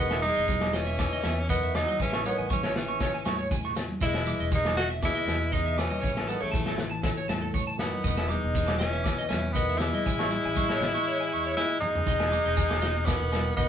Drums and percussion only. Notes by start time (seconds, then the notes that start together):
0.11 snare, low agogo
0.22 high conga, shekere
0.47 kick, high conga, shekere
0.61 snare, high conga, low agogo
0.73 snare, low conga, shekere
0.99 kick, snare, low agogo, shekere
1.23 snare, high conga, low agogo, shekere
1.49 kick, shekere
1.75 snare, low conga, low agogo, shekere
1.88 high conga
2.00 kick, shekere
2.13 snare, low agogo
2.25 high conga, shekere
2.50 kick, high conga, shekere
2.63 snare, high conga, low agogo
2.76 snare, low conga, shekere
3.00 kick, snare, low agogo, shekere
3.25 snare, high conga, low agogo, shekere
3.51 kick, shekere
3.64 snare
3.75 snare, low conga, low agogo, shekere
3.89 high conga
4.01 kick, shekere
4.14 snare, low agogo
4.25 high conga, shekere
4.51 kick, high conga, shekere
4.64 snare, high conga, low agogo
4.76 snare, low conga, shekere
5.02 kick, snare, low agogo, shekere
5.27 snare, high conga, low agogo, shekere
5.53 kick, shekere
5.77 snare, low conga, low agogo, shekere
5.90 high conga
6.03 kick, shekere
6.17 snare, low agogo
6.27 high conga, shekere
6.52 kick, high conga, shekere
6.66 snare, high conga, low agogo
6.78 snare, low conga, shekere
7.03 kick, snare, low agogo, shekere
7.28 snare, high conga, low agogo, shekere
7.54 kick, shekere
7.78 snare, low conga, low agogo, shekere
7.91 high conga
8.04 kick, shekere
8.18 snare, low agogo
8.29 high conga, shekere
8.54 kick, high conga, shekere
8.67 snare, high conga, low agogo
8.79 snare, low conga, shekere
9.05 kick, snare, low agogo, shekere
9.29 snare, high conga, low agogo, shekere
9.55 kick, shekere
9.69 snare
9.79 snare, low conga, low agogo, shekere
9.93 high conga
10.06 kick, shekere
10.19 snare, low agogo
10.30 high conga, shekere
10.55 kick, high conga, shekere
10.69 snare, low agogo
10.81 snare, low conga, shekere
11.57 snare
11.82 mid tom
11.95 floor tom
12.06 kick, shekere
12.20 snare, low agogo
12.30 high conga, shekere
12.57 kick, shekere
12.70 snare, low agogo
12.81 snare, low conga, shekere
13.07 kick, snare, low agogo, shekere
13.32 snare, high conga, low agogo, shekere
13.57 kick, shekere